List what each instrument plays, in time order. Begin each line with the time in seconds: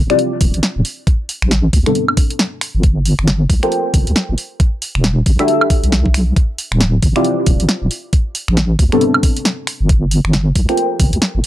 0.10 synth stab C4 E4 F4 G4 D5, finger snap, closed hi-hat
0.19 closed hi-hat
0.41 wobble bass D1, kick, open hi-hat
0.54 wobble bass A1, closed hi-hat
0.63 snare, closed hi-hat
0.76 wobble bass D1
0.85 open hi-hat
1.07 kick, closed hi-hat
1.29 open hi-hat
1.42 wobble bass A1, finger snap
1.51 snare, closed hi-hat
1.73 wobble bass D2, kick, open hi-hat
1.86 synth stab G3 B3 C4 D4 A4, finger snap, closed hi-hat
1.95 closed hi-hat
2.08 high woodblock
2.17 kick, open hi-hat
2.30 closed hi-hat
2.39 snare, closed hi-hat
2.61 finger snap, open hi-hat
2.75 wobble bass G1
2.83 kick, closed hi-hat
3.05 open hi-hat
3.19 wobble bass G1, finger snap
3.27 snare, closed hi-hat
3.50 wobble bass C2, kick, open hi-hat
3.63 synth stab F4 A4 A#4 C5 G5, finger snap, closed hi-hat
3.72 closed hi-hat
3.94 wobble bass G1, kick, open hi-hat
4.07 wobble bass D2, closed hi-hat
4.16 snare, closed hi-hat
4.29 wobble bass G1
4.38 open hi-hat
4.60 kick, closed hi-hat
4.82 open hi-hat
4.95 wobble bass E1, finger snap
5.04 snare, closed hi-hat
5.26 wobble bass A1, kick, open hi-hat
5.39 synth stab D4 F#4 G4 A4 E5, finger snap, closed hi-hat
5.48 closed hi-hat
5.61 high woodblock
5.70 kick, open hi-hat
5.83 wobble bass B1, closed hi-hat
5.92 snare, closed hi-hat
6.06 kick
6.14 finger snap, open hi-hat
6.36 kick, closed hi-hat
6.58 open hi-hat
6.72 wobble bass D1, finger snap
6.81 snare, closed hi-hat
7.03 wobble bass G1, kick, open hi-hat
7.16 synth stab C4 E4 F4 G4 D5, finger snap, closed hi-hat
7.24 closed hi-hat
7.46 wobble bass D1, kick, open hi-hat
7.60 wobble bass A1, closed hi-hat
7.69 snare, closed hi-hat
7.82 wobble bass D1
7.91 open hi-hat
8.13 kick, closed hi-hat
8.35 open hi-hat
8.48 wobble bass A1, finger snap
8.57 snare, closed hi-hat
8.79 wobble bass D2, kick, open hi-hat
8.92 synth stab G3 B3 C4 D4 A4, finger snap, closed hi-hat
9.01 closed hi-hat
9.14 high woodblock
9.23 kick, open hi-hat
9.37 closed hi-hat
9.45 snare, closed hi-hat
9.67 finger snap, open hi-hat
9.81 wobble bass G1
9.89 kick, closed hi-hat
10.11 open hi-hat
10.25 wobble bass G1, finger snap
10.33 snare, closed hi-hat
10.55 wobble bass C2, kick, open hi-hat
10.69 synth stab F4 A4 A#4 C5 G5, finger snap, closed hi-hat
10.77 closed hi-hat
11.00 wobble bass G1, kick, open hi-hat
11.13 wobble bass D2, closed hi-hat
11.22 snare, closed hi-hat
11.35 wobble bass G1